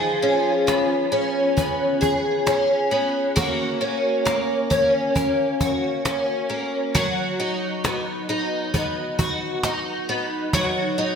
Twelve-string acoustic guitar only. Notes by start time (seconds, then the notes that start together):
Already playing: F3 B3 G#4
0.22 C#4
0.67 B3
1.12 C#4
1.57 B3
2.01 G#4
2.47 C#4
2.91 B3
3.36 A#3 F#4
3.81 C#4
4.25 A#3
4.70 C#4
5.15 A#3
5.61 F#4
6.05 C#4
6.50 A#3
6.95 F#3 F#4
7.40 D#4
7.84 B3
8.29 D#4
8.74 B3
9.19 F#4
9.64 D#4
10.09 B3
10.54 F#3 F#4
10.98 D#4